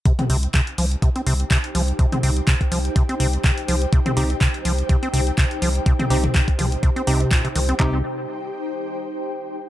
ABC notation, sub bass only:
X:1
M:4/4
L:1/8
Q:"Swing 16ths" 1/4=124
K:Cm
V:1 name="Sub bass" clef=bass
z C,, z C,, z C,, z C,, | z C,, z C,, z C,, z C,, | z C,, z C,, z C,, z C,, | z C,, z C,, z C,, z C,, |
C,, z6 z |]